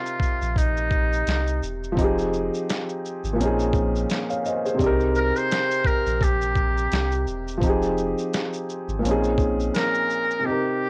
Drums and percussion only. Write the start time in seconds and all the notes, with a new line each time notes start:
0.06 shaker
0.20 kick, shaker
0.42 shaker
0.56 kick, closed hi-hat, shaker
0.77 shaker
0.91 kick, shaker
1.13 shaker
1.27 snare, closed hi-hat, shaker
1.47 shaker
1.63 shaker
1.83 shaker
1.97 kick, closed hi-hat, shaker
2.18 shaker
2.33 shaker
2.54 shaker
2.69 snare, closed hi-hat, shaker
2.89 shaker
3.05 shaker
3.24 shaker
3.41 closed hi-hat, shaker
3.59 shaker
3.73 kick, shaker
3.96 shaker
4.10 snare, closed hi-hat, shaker
4.30 shaker
4.45 shaker
4.66 shaker
4.79 kick, closed hi-hat, shaker
5.00 shaker
5.15 shaker
5.36 shaker
5.51 snare, closed hi-hat, shaker
5.71 shaker
5.85 kick, shaker
6.06 shaker
6.21 kick, closed hi-hat, shaker
6.41 shaker
6.55 kick, shaker
6.78 shaker
6.92 snare, closed hi-hat, shaker
7.12 shaker
7.27 shaker
7.48 shaker
7.62 kick, closed hi-hat, shaker
7.82 shaker
7.98 shaker
8.18 shaker
8.33 snare, closed hi-hat, shaker
8.53 shaker
8.69 shaker
8.89 shaker
9.05 closed hi-hat, shaker
9.24 shaker
9.38 kick, shaker
9.60 shaker
9.75 snare, closed hi-hat, shaker
9.94 shaker
10.10 shaker
10.30 shaker